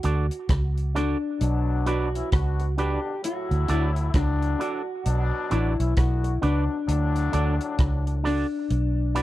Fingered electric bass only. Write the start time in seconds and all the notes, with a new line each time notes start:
0.04 D2
0.49 C#2
1.41 B1
2.33 C#2
3.51 D2
3.69 D2
4.14 C#2
5.06 B1
5.52 A1
5.80 B1
5.97 B1
6.43 C#2
6.88 D2
7.34 D2
7.79 C#2
8.70 B1